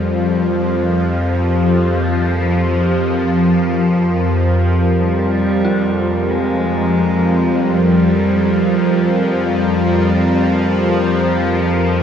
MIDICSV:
0, 0, Header, 1, 5, 480
1, 0, Start_track
1, 0, Tempo, 500000
1, 11548, End_track
2, 0, Start_track
2, 0, Title_t, "Ambient pad"
2, 0, Program_c, 0, 92
2, 0, Note_on_c, 0, 60, 72
2, 0, Note_on_c, 0, 65, 76
2, 0, Note_on_c, 0, 67, 86
2, 0, Note_on_c, 0, 70, 57
2, 11548, Note_off_c, 0, 60, 0
2, 11548, Note_off_c, 0, 65, 0
2, 11548, Note_off_c, 0, 67, 0
2, 11548, Note_off_c, 0, 70, 0
2, 11548, End_track
3, 0, Start_track
3, 0, Title_t, "Synth bell"
3, 0, Program_c, 1, 98
3, 0, Control_c, 1, 64, 127
3, 5421, Note_on_c, 1, 65, 64
3, 11548, Note_off_c, 1, 65, 0
3, 11548, End_track
4, 0, Start_track
4, 0, Title_t, "Cello"
4, 0, Program_c, 2, 42
4, 0, Note_on_c, 2, 55, 82
4, 1713, Note_off_c, 2, 55, 0
4, 4196, Note_on_c, 2, 53, 82
4, 4798, Note_on_c, 2, 55, 102
4, 4813, Note_off_c, 2, 53, 0
4, 6039, Note_on_c, 2, 56, 90
4, 6054, Note_off_c, 2, 55, 0
4, 7286, Note_on_c, 2, 55, 93
4, 7301, Note_off_c, 2, 56, 0
4, 8496, Note_off_c, 2, 55, 0
4, 8501, Note_on_c, 2, 55, 83
4, 11521, Note_off_c, 2, 55, 0
4, 11548, End_track
5, 0, Start_track
5, 0, Title_t, "Synth drone"
5, 0, Program_c, 3, 95
5, 0, Note_on_c, 3, 41, 69
5, 0, Note_on_c, 3, 53, 64
5, 11548, Note_off_c, 3, 41, 0
5, 11548, Note_off_c, 3, 53, 0
5, 11548, End_track
0, 0, End_of_file